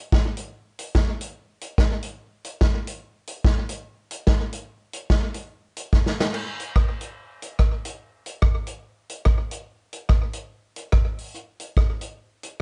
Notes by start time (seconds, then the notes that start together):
0.12 kick, snare
0.37 closed hi-hat
0.79 closed hi-hat
0.95 kick, snare
1.21 closed hi-hat
1.61 closed hi-hat
1.78 kick, snare
2.03 closed hi-hat
2.44 closed hi-hat
2.61 kick, snare
2.87 closed hi-hat
3.27 closed hi-hat
3.45 kick, snare
3.69 closed hi-hat
4.11 closed hi-hat
4.27 kick, snare
4.53 closed hi-hat
4.93 closed hi-hat
5.10 kick, snare
5.34 closed hi-hat
5.76 closed hi-hat
5.93 kick, snare
6.06 snare
6.20 snare
6.34 crash
6.60 closed hi-hat
6.76 kick, cross-stick
7.01 closed hi-hat
7.42 closed hi-hat
7.59 kick, cross-stick
7.85 closed hi-hat
8.26 closed hi-hat
8.42 kick, cross-stick
8.67 closed hi-hat
9.09 closed hi-hat
9.25 kick, cross-stick
9.51 closed hi-hat
9.93 closed hi-hat
10.09 kick, cross-stick
10.33 closed hi-hat
10.76 closed hi-hat
10.92 kick, cross-stick
11.18 open hi-hat
11.34 hi-hat pedal
11.60 closed hi-hat
11.77 kick, cross-stick
12.01 closed hi-hat
12.43 closed hi-hat